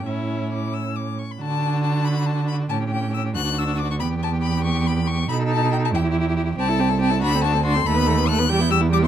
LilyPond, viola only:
\new Staff \with { instrumentName = "Viola" } { \time 6/8 \key d \major \tempo 4. = 93 cis'2~ cis'8 r8 | d'2. | cis'4. d'4. | b2. |
dis'4. e'4. | \key d \mixolydian c'16 e'16 c'16 e'16 c'16 e'16 d'16 c'16 d'16 c'16 d'16 c'16 | a16 b16 a16 b16 a16 b16 g16 b16 g16 b16 g16 b16 | }